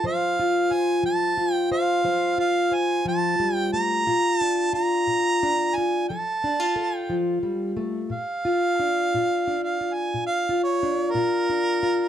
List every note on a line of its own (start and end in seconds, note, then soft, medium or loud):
0.00 0.65 F3 medium
0.00 0.39 F4 medium
0.05 0.70 C5 medium
0.05 0.74 F5 loud
0.40 1.37 F4 medium
0.71 1.70 C5 medium
0.71 1.05 G#5 medium
1.03 1.65 F3 medium
1.03 1.54 A5 loud
1.38 2.38 F4 medium
1.54 1.69 G5 loud
1.72 2.04 C5 medium
1.72 2.36 F5 loud
2.04 2.66 F3 medium
2.04 2.70 C5 medium
2.38 4.07 F4 medium
2.38 2.76 F5 medium
2.72 4.03 C5 medium
2.72 3.07 G#5 loud
3.05 3.39 F3 medium
3.05 3.55 A5 loud
3.40 3.73 G3 medium
3.55 3.71 G5 loud
3.73 4.07 A3 medium
3.73 4.38 A#5 loud
4.07 4.68 A#2 medium
4.07 4.72 F4 medium
4.38 5.42 D4 medium
4.38 4.70 A5 loud
4.73 5.75 F4 medium
4.73 5.77 A#5 loud
5.07 5.68 A#2 medium
5.43 6.06 D4 medium
5.76 6.06 F4 medium
5.76 6.08 G#5 medium
6.09 6.70 F3 medium
6.09 6.75 A4 medium
6.09 6.97 A5 loud
6.44 6.60 D4 medium
6.60 8.11 F4 soft
6.76 8.06 A4 medium
6.97 7.39 G5 loud
7.09 7.42 F3 medium
7.43 7.76 G3 medium
7.77 8.10 A3 medium
8.10 8.71 A#2 medium
8.10 9.58 F5 loud
8.45 9.15 F4 medium
8.80 9.47 D4 medium
9.14 9.73 A#2 medium
9.14 9.81 F4 medium
9.48 10.83 D4 medium
9.63 9.96 F5 medium
9.81 10.49 F4 soft
9.94 10.26 G#5 medium
10.14 10.73 A#2 medium
10.26 10.60 F5 medium
10.49 11.15 F4 medium
10.63 11.13 C#5 medium
10.83 11.49 D4 medium
11.11 11.74 A#2 medium
11.11 11.83 F4 medium
11.11 12.08 A#4 loud
11.49 12.08 D4 medium
11.83 12.08 F4 medium